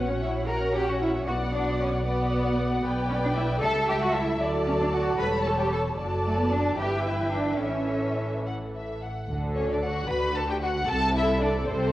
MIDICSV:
0, 0, Header, 1, 6, 480
1, 0, Start_track
1, 0, Key_signature, 2, "major"
1, 0, Tempo, 525394
1, 1160, Time_signature, 6, 3, 24, 8
1, 5479, Tempo, 548948
1, 8359, Tempo, 530973
1, 10736, End_track
2, 0, Start_track
2, 0, Title_t, "Violin section"
2, 0, Program_c, 0, 48
2, 76, Note_on_c, 0, 73, 55
2, 197, Note_on_c, 0, 76, 66
2, 198, Note_off_c, 0, 73, 0
2, 270, Note_off_c, 0, 76, 0
2, 440, Note_on_c, 0, 82, 69
2, 676, Note_off_c, 0, 82, 0
2, 687, Note_on_c, 0, 79, 70
2, 804, Note_off_c, 0, 79, 0
2, 806, Note_on_c, 0, 78, 59
2, 923, Note_off_c, 0, 78, 0
2, 924, Note_on_c, 0, 76, 67
2, 1161, Note_on_c, 0, 78, 78
2, 1162, Note_off_c, 0, 76, 0
2, 1396, Note_off_c, 0, 78, 0
2, 1403, Note_on_c, 0, 74, 69
2, 1642, Note_off_c, 0, 74, 0
2, 1644, Note_on_c, 0, 73, 73
2, 1883, Note_off_c, 0, 73, 0
2, 1888, Note_on_c, 0, 71, 75
2, 2586, Note_off_c, 0, 71, 0
2, 2831, Note_on_c, 0, 73, 76
2, 2879, Note_off_c, 0, 73, 0
2, 2946, Note_on_c, 0, 74, 66
2, 3066, Note_off_c, 0, 74, 0
2, 3067, Note_on_c, 0, 76, 79
2, 3304, Note_on_c, 0, 81, 90
2, 3310, Note_off_c, 0, 76, 0
2, 3544, Note_off_c, 0, 81, 0
2, 3552, Note_on_c, 0, 79, 81
2, 3668, Note_on_c, 0, 78, 72
2, 3670, Note_off_c, 0, 79, 0
2, 3791, Note_off_c, 0, 78, 0
2, 3791, Note_on_c, 0, 76, 79
2, 4032, Note_off_c, 0, 76, 0
2, 4270, Note_on_c, 0, 73, 74
2, 4382, Note_off_c, 0, 73, 0
2, 4384, Note_on_c, 0, 74, 60
2, 4433, Note_off_c, 0, 74, 0
2, 4499, Note_on_c, 0, 78, 80
2, 4572, Note_off_c, 0, 78, 0
2, 4737, Note_on_c, 0, 83, 93
2, 4980, Note_off_c, 0, 83, 0
2, 4985, Note_on_c, 0, 81, 77
2, 5103, Note_on_c, 0, 79, 67
2, 5109, Note_off_c, 0, 81, 0
2, 5153, Note_off_c, 0, 79, 0
2, 5229, Note_on_c, 0, 81, 73
2, 5302, Note_off_c, 0, 81, 0
2, 5713, Note_on_c, 0, 69, 71
2, 5820, Note_off_c, 0, 69, 0
2, 5822, Note_on_c, 0, 71, 69
2, 5942, Note_off_c, 0, 71, 0
2, 5943, Note_on_c, 0, 74, 71
2, 6177, Note_on_c, 0, 79, 76
2, 6180, Note_off_c, 0, 74, 0
2, 6417, Note_off_c, 0, 79, 0
2, 6418, Note_on_c, 0, 76, 63
2, 6488, Note_off_c, 0, 76, 0
2, 6660, Note_on_c, 0, 74, 66
2, 6899, Note_off_c, 0, 74, 0
2, 6904, Note_on_c, 0, 73, 64
2, 7635, Note_off_c, 0, 73, 0
2, 8597, Note_on_c, 0, 73, 87
2, 8712, Note_off_c, 0, 73, 0
2, 8727, Note_on_c, 0, 74, 72
2, 8844, Note_on_c, 0, 78, 89
2, 8846, Note_off_c, 0, 74, 0
2, 9082, Note_on_c, 0, 83, 99
2, 9085, Note_off_c, 0, 78, 0
2, 9322, Note_on_c, 0, 81, 87
2, 9324, Note_off_c, 0, 83, 0
2, 9443, Note_off_c, 0, 81, 0
2, 9453, Note_on_c, 0, 79, 81
2, 9499, Note_off_c, 0, 79, 0
2, 9561, Note_on_c, 0, 78, 101
2, 9797, Note_off_c, 0, 78, 0
2, 9802, Note_on_c, 0, 81, 125
2, 10040, Note_on_c, 0, 76, 95
2, 10042, Note_off_c, 0, 81, 0
2, 10275, Note_off_c, 0, 76, 0
2, 10278, Note_on_c, 0, 74, 86
2, 10515, Note_on_c, 0, 72, 101
2, 10518, Note_off_c, 0, 74, 0
2, 10736, Note_off_c, 0, 72, 0
2, 10736, End_track
3, 0, Start_track
3, 0, Title_t, "Violin section"
3, 0, Program_c, 1, 48
3, 0, Note_on_c, 1, 73, 61
3, 0, Note_on_c, 1, 78, 61
3, 429, Note_off_c, 1, 73, 0
3, 435, Note_off_c, 1, 78, 0
3, 446, Note_on_c, 1, 78, 63
3, 447, Note_on_c, 1, 73, 65
3, 1149, Note_off_c, 1, 73, 0
3, 1149, Note_off_c, 1, 78, 0
3, 1168, Note_on_c, 1, 74, 71
3, 1168, Note_on_c, 1, 78, 64
3, 1870, Note_off_c, 1, 78, 0
3, 1871, Note_off_c, 1, 74, 0
3, 1882, Note_on_c, 1, 74, 68
3, 1882, Note_on_c, 1, 78, 69
3, 2583, Note_off_c, 1, 74, 0
3, 2583, Note_off_c, 1, 78, 0
3, 2602, Note_on_c, 1, 79, 75
3, 2603, Note_on_c, 1, 74, 77
3, 3301, Note_off_c, 1, 74, 0
3, 3314, Note_on_c, 1, 76, 78
3, 3315, Note_off_c, 1, 79, 0
3, 3316, Note_on_c, 1, 81, 70
3, 4022, Note_off_c, 1, 81, 0
3, 4033, Note_on_c, 1, 81, 70
3, 4034, Note_off_c, 1, 76, 0
3, 4035, Note_on_c, 1, 74, 72
3, 4737, Note_off_c, 1, 81, 0
3, 4753, Note_off_c, 1, 74, 0
3, 4757, Note_on_c, 1, 73, 73
3, 4757, Note_on_c, 1, 81, 76
3, 5465, Note_off_c, 1, 73, 0
3, 5465, Note_off_c, 1, 81, 0
3, 5475, Note_on_c, 1, 74, 68
3, 5478, Note_on_c, 1, 81, 70
3, 6144, Note_off_c, 1, 74, 0
3, 6146, Note_off_c, 1, 81, 0
3, 6187, Note_on_c, 1, 79, 64
3, 6189, Note_on_c, 1, 76, 64
3, 6895, Note_off_c, 1, 76, 0
3, 6908, Note_off_c, 1, 79, 0
3, 6911, Note_on_c, 1, 76, 55
3, 6912, Note_off_c, 1, 76, 0
3, 6912, Note_on_c, 1, 76, 54
3, 7577, Note_off_c, 1, 76, 0
3, 7637, Note_on_c, 1, 78, 63
3, 7707, Note_off_c, 1, 78, 0
3, 7880, Note_on_c, 1, 76, 52
3, 8116, Note_off_c, 1, 76, 0
3, 8125, Note_on_c, 1, 78, 61
3, 8361, Note_off_c, 1, 78, 0
3, 8611, Note_on_c, 1, 61, 72
3, 8720, Note_off_c, 1, 61, 0
3, 8741, Note_on_c, 1, 62, 54
3, 8786, Note_off_c, 1, 62, 0
3, 8853, Note_on_c, 1, 66, 80
3, 9085, Note_off_c, 1, 66, 0
3, 9089, Note_on_c, 1, 71, 91
3, 9322, Note_off_c, 1, 71, 0
3, 9339, Note_on_c, 1, 69, 77
3, 9452, Note_off_c, 1, 69, 0
3, 9456, Note_on_c, 1, 67, 75
3, 9502, Note_off_c, 1, 67, 0
3, 9567, Note_on_c, 1, 66, 89
3, 9639, Note_off_c, 1, 66, 0
3, 9806, Note_on_c, 1, 69, 96
3, 10039, Note_off_c, 1, 69, 0
3, 10041, Note_on_c, 1, 64, 95
3, 10276, Note_off_c, 1, 64, 0
3, 10276, Note_on_c, 1, 62, 81
3, 10348, Note_off_c, 1, 62, 0
3, 10522, Note_on_c, 1, 60, 87
3, 10736, Note_off_c, 1, 60, 0
3, 10736, End_track
4, 0, Start_track
4, 0, Title_t, "Viola section"
4, 0, Program_c, 2, 48
4, 0, Note_on_c, 2, 61, 60
4, 0, Note_on_c, 2, 66, 62
4, 425, Note_off_c, 2, 66, 0
4, 427, Note_off_c, 2, 61, 0
4, 436, Note_on_c, 2, 66, 66
4, 438, Note_on_c, 2, 61, 66
4, 1143, Note_off_c, 2, 66, 0
4, 1144, Note_off_c, 2, 61, 0
4, 1165, Note_on_c, 2, 66, 64
4, 1166, Note_on_c, 2, 59, 64
4, 1869, Note_off_c, 2, 66, 0
4, 1873, Note_off_c, 2, 59, 0
4, 1884, Note_on_c, 2, 59, 71
4, 1884, Note_on_c, 2, 66, 73
4, 2584, Note_off_c, 2, 59, 0
4, 2584, Note_off_c, 2, 66, 0
4, 2600, Note_on_c, 2, 59, 71
4, 2601, Note_on_c, 2, 71, 73
4, 3300, Note_off_c, 2, 59, 0
4, 3310, Note_on_c, 2, 55, 75
4, 3312, Note_on_c, 2, 69, 81
4, 3314, Note_off_c, 2, 71, 0
4, 4017, Note_off_c, 2, 55, 0
4, 4018, Note_off_c, 2, 69, 0
4, 4027, Note_on_c, 2, 54, 74
4, 4027, Note_on_c, 2, 69, 79
4, 4734, Note_off_c, 2, 69, 0
4, 4749, Note_off_c, 2, 54, 0
4, 4750, Note_on_c, 2, 69, 72
4, 4753, Note_on_c, 2, 55, 73
4, 5462, Note_off_c, 2, 69, 0
4, 5473, Note_on_c, 2, 54, 70
4, 5475, Note_on_c, 2, 69, 67
4, 5478, Note_off_c, 2, 55, 0
4, 6143, Note_off_c, 2, 54, 0
4, 6144, Note_off_c, 2, 69, 0
4, 6183, Note_on_c, 2, 71, 64
4, 6184, Note_on_c, 2, 52, 64
4, 6894, Note_off_c, 2, 52, 0
4, 6903, Note_on_c, 2, 69, 59
4, 6904, Note_on_c, 2, 52, 64
4, 6906, Note_off_c, 2, 71, 0
4, 8153, Note_off_c, 2, 69, 0
4, 8154, Note_off_c, 2, 52, 0
4, 8358, Note_on_c, 2, 69, 75
4, 9049, Note_off_c, 2, 69, 0
4, 9087, Note_on_c, 2, 66, 80
4, 9790, Note_off_c, 2, 66, 0
4, 9808, Note_on_c, 2, 69, 102
4, 10736, Note_off_c, 2, 69, 0
4, 10736, End_track
5, 0, Start_track
5, 0, Title_t, "Cello section"
5, 0, Program_c, 3, 48
5, 85, Note_on_c, 3, 61, 63
5, 201, Note_on_c, 3, 64, 80
5, 203, Note_off_c, 3, 61, 0
5, 436, Note_off_c, 3, 64, 0
5, 441, Note_on_c, 3, 70, 88
5, 681, Note_off_c, 3, 70, 0
5, 681, Note_on_c, 3, 67, 92
5, 799, Note_off_c, 3, 67, 0
5, 809, Note_on_c, 3, 66, 76
5, 924, Note_on_c, 3, 64, 81
5, 925, Note_off_c, 3, 66, 0
5, 997, Note_off_c, 3, 64, 0
5, 1163, Note_on_c, 3, 66, 90
5, 1236, Note_off_c, 3, 66, 0
5, 1403, Note_on_c, 3, 62, 80
5, 1637, Note_off_c, 3, 62, 0
5, 1644, Note_on_c, 3, 61, 90
5, 1717, Note_off_c, 3, 61, 0
5, 1885, Note_on_c, 3, 59, 77
5, 2585, Note_off_c, 3, 59, 0
5, 2830, Note_on_c, 3, 61, 82
5, 2879, Note_off_c, 3, 61, 0
5, 2956, Note_on_c, 3, 62, 77
5, 3003, Note_off_c, 3, 62, 0
5, 3074, Note_on_c, 3, 64, 90
5, 3147, Note_off_c, 3, 64, 0
5, 3310, Note_on_c, 3, 69, 111
5, 3547, Note_off_c, 3, 69, 0
5, 3553, Note_on_c, 3, 67, 94
5, 3601, Note_off_c, 3, 67, 0
5, 3680, Note_on_c, 3, 66, 94
5, 3793, Note_on_c, 3, 64, 91
5, 3794, Note_off_c, 3, 66, 0
5, 4033, Note_off_c, 3, 64, 0
5, 4267, Note_on_c, 3, 61, 89
5, 4316, Note_off_c, 3, 61, 0
5, 4392, Note_on_c, 3, 62, 69
5, 4440, Note_off_c, 3, 62, 0
5, 4507, Note_on_c, 3, 66, 93
5, 4745, Note_off_c, 3, 66, 0
5, 4749, Note_on_c, 3, 71, 104
5, 4822, Note_off_c, 3, 71, 0
5, 4992, Note_on_c, 3, 69, 82
5, 5041, Note_off_c, 3, 69, 0
5, 5124, Note_on_c, 3, 67, 86
5, 5233, Note_on_c, 3, 69, 93
5, 5237, Note_off_c, 3, 67, 0
5, 5307, Note_off_c, 3, 69, 0
5, 5708, Note_on_c, 3, 57, 78
5, 5818, Note_off_c, 3, 57, 0
5, 5828, Note_on_c, 3, 59, 74
5, 5938, Note_on_c, 3, 62, 81
5, 5942, Note_off_c, 3, 59, 0
5, 6175, Note_on_c, 3, 67, 88
5, 6177, Note_off_c, 3, 62, 0
5, 6412, Note_off_c, 3, 67, 0
5, 6415, Note_on_c, 3, 64, 74
5, 6654, Note_off_c, 3, 64, 0
5, 6656, Note_on_c, 3, 62, 81
5, 6899, Note_on_c, 3, 61, 75
5, 6902, Note_off_c, 3, 62, 0
5, 7632, Note_off_c, 3, 61, 0
5, 8357, Note_on_c, 3, 50, 75
5, 9000, Note_off_c, 3, 50, 0
5, 9082, Note_on_c, 3, 50, 76
5, 9717, Note_off_c, 3, 50, 0
5, 9797, Note_on_c, 3, 48, 89
5, 10432, Note_off_c, 3, 48, 0
5, 10516, Note_on_c, 3, 48, 91
5, 10736, Note_off_c, 3, 48, 0
5, 10736, End_track
6, 0, Start_track
6, 0, Title_t, "Double bass section"
6, 0, Program_c, 4, 48
6, 0, Note_on_c, 4, 34, 67
6, 1132, Note_off_c, 4, 34, 0
6, 1158, Note_on_c, 4, 35, 73
6, 2567, Note_off_c, 4, 35, 0
6, 2598, Note_on_c, 4, 35, 80
6, 3299, Note_off_c, 4, 35, 0
6, 3309, Note_on_c, 4, 37, 75
6, 4029, Note_on_c, 4, 38, 77
6, 4031, Note_off_c, 4, 37, 0
6, 4748, Note_on_c, 4, 28, 75
6, 4750, Note_off_c, 4, 38, 0
6, 5461, Note_off_c, 4, 28, 0
6, 5475, Note_on_c, 4, 30, 77
6, 6144, Note_off_c, 4, 30, 0
6, 6177, Note_on_c, 4, 31, 63
6, 6901, Note_on_c, 4, 33, 57
6, 6903, Note_off_c, 4, 31, 0
6, 8153, Note_off_c, 4, 33, 0
6, 8355, Note_on_c, 4, 38, 84
6, 8998, Note_off_c, 4, 38, 0
6, 9080, Note_on_c, 4, 38, 73
6, 9716, Note_off_c, 4, 38, 0
6, 9800, Note_on_c, 4, 36, 93
6, 10434, Note_off_c, 4, 36, 0
6, 10521, Note_on_c, 4, 36, 97
6, 10736, Note_off_c, 4, 36, 0
6, 10736, End_track
0, 0, End_of_file